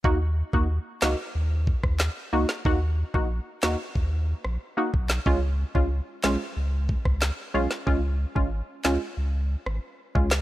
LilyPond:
<<
  \new Staff \with { instrumentName = "Synth stab" } { \time 4/4 \key ees \minor \tempo 4 = 92 <bes ees' ges'>16 r8 <bes ees' ges'>16 r8 <bes ees' ges'>16 r4. r16 <bes ees' ges'>16 r16 | <bes ees' ges'>16 r8 <bes ees' ges'>16 r8 <bes ees' ges'>16 r4. <bes ees' ges'>16 r8 | <aes des' f'>16 r8 <aes des' f'>16 r8 <aes des' f'>16 r4. r16 <aes des' f'>16 r16 | <aes des' f'>16 r8 <aes des' f'>16 r8 <aes des' f'>16 r4. r16 <aes des' f'>16 r16 | }
  \new Staff \with { instrumentName = "Sub bass" } { \clef bass \time 4/4 \key ees \minor ees,8. ees,8 r16 des,16 r16 ees,8. ees,8 r16 des,16 r16 | ees,8. bes,,8 r16 ees,16 r16 ees,8. bes,,16 r8 ces,8 | des,8. des,8 r16 ces,16 r16 des,8. des,8 r16 ces,16 r16 | des,8. aes,,8 r16 des,16 r16 des,8. aes,,16 r8 des,8 | }
  \new DrumStaff \with { instrumentName = "Drums" } \drummode { \time 4/4 bd8. bd16 r8 <hc sn>8 r8 bd16 <bd ss>16 <hc sn>8. sn16 | bd8. bd16 r8 <hc sn>8 bd8. ss16 r8 bd16 <hc sn>16 | bd8. bd16 r8 <hc sn>8 r8 bd16 <bd ss>16 <hc sn>8. sn16 | bd8. bd16 r8 <hc sn>8 r8. ss16 r8 bd16 <hc sn>16 | }
>>